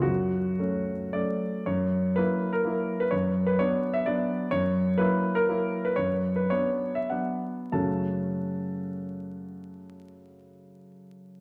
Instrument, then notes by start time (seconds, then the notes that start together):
grand piano
0.02 F#2 F#4
0.59 F#3 A3 C#4
1.13 F#3 A3 C#4 D5
1.66 F#2 C#5
2.16 F#3 A#3 E4 B4
2.53 A#4
2.64 F#3 A#3 E4
3.00 B4
3.11 F#2 C#5
3.46 B4
3.59 F#3 B3 D4 C#5
3.94 E5
4.06 F#3 B3 D4 D5
4.51 F#2 C#5
4.98 F#3 A#3 E4 B4
5.35 A#4
5.49 F#3 A#3 E4
5.85 B4
5.96 F#2 C#5
6.36 B4
6.50 F#3 B3 D4 C#5
6.95 E5
7.10 F#3 B3 D4 F#5
7.72 F#2 C#3 A3 C#4 F#4 A4 A5